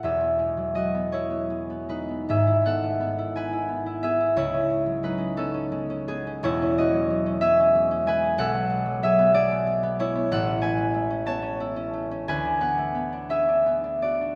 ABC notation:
X:1
M:6/8
L:1/16
Q:3/8=59
K:E
V:1 name="Harp"
[Gef]4 [Fd]2 [Ec]4 [DB]2 | [Ge]2 [Af]4 [Bg]4 [Ge]2 | [Ec]4 [DB]2 [CA]4 [B,G]2 | [Ec]2 [Fd]4 [Ge]4 [Bg]2 |
[K:A] [Af]4 [Ge]2 [Gd]4 [Ec]2 | [Af]2 [Bg]4 [ca]6 | [Bg]2 [Bf]4 [Ge]4 [Fd]2 |]
V:2 name="Harp"
[E,,,E,,E] B, G, F, G, B, A, B, G, B, G, B, | [G,,,G,,] E B, A, B, E D E B, E B, E | C,, C G, F, G, C B, C G, C G, C | [E,,,E,,] C G, F, G, C B, C G, C G, C |
[K:A] B,,, B, G, F, G, B, A, B, G, B, G, B, | A,,, C A, G, A, C B, C E C A, C | D,, D B, A, B, D C D B, D B, D |]